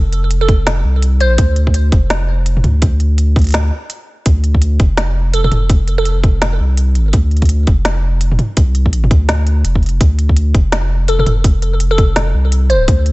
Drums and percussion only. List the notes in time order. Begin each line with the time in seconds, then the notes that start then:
0.12 closed hi-hat
0.31 closed hi-hat
0.48 kick, closed hi-hat
0.67 snare, closed hi-hat, mid tom
1.02 closed hi-hat
1.20 closed hi-hat
1.38 kick, closed hi-hat
1.56 closed hi-hat
1.67 kick
1.74 closed hi-hat
1.92 kick, closed hi-hat
2.10 snare, closed hi-hat
2.46 closed hi-hat
2.57 mid tom
2.64 closed hi-hat, mid tom
2.82 kick, closed hi-hat
3.00 closed hi-hat
3.18 closed hi-hat
3.36 kick, closed hi-hat
3.39 closed hi-hat
3.42 closed hi-hat
3.44 closed hi-hat
3.47 closed hi-hat
3.49 closed hi-hat
3.51 closed hi-hat
3.52 snare, closed hi-hat
3.54 closed hi-hat, mid tom
3.90 closed hi-hat
4.26 kick, closed hi-hat
4.44 closed hi-hat
4.55 kick
4.62 closed hi-hat
4.80 kick, closed hi-hat
4.97 snare, closed hi-hat
5.33 closed hi-hat
5.44 mid tom
5.52 closed hi-hat, mid tom
5.70 kick, closed hi-hat
5.88 closed hi-hat
6.05 closed hi-hat
6.24 kick, closed hi-hat
6.42 snare, closed hi-hat, mid tom
6.77 closed hi-hat
6.95 closed hi-hat
7.13 kick, closed hi-hat
7.31 closed hi-hat
7.37 closed hi-hat
7.42 kick, closed hi-hat
7.45 closed hi-hat
7.49 closed hi-hat
7.67 kick, closed hi-hat
7.85 snare, closed hi-hat
8.21 closed hi-hat
8.32 mid tom
8.39 closed hi-hat, mid tom
8.57 kick, closed hi-hat
8.75 closed hi-hat
8.86 kick
8.93 closed hi-hat
9.04 mid tom
9.11 kick, closed hi-hat
9.29 snare, closed hi-hat, mid tom
9.47 closed hi-hat
9.65 closed hi-hat
9.75 kick
9.83 closed hi-hat
9.86 closed hi-hat
9.89 closed hi-hat
10.01 kick, closed hi-hat
10.19 closed hi-hat
10.29 kick
10.37 closed hi-hat
10.55 kick, closed hi-hat
10.72 snare, closed hi-hat
11.08 closed hi-hat
11.19 mid tom
11.26 closed hi-hat, mid tom
11.44 kick, closed hi-hat
11.62 closed hi-hat
11.80 closed hi-hat
11.98 kick, closed hi-hat
12.16 snare, closed hi-hat, mid tom
12.52 closed hi-hat
12.70 closed hi-hat
12.88 kick, closed hi-hat
13.06 closed hi-hat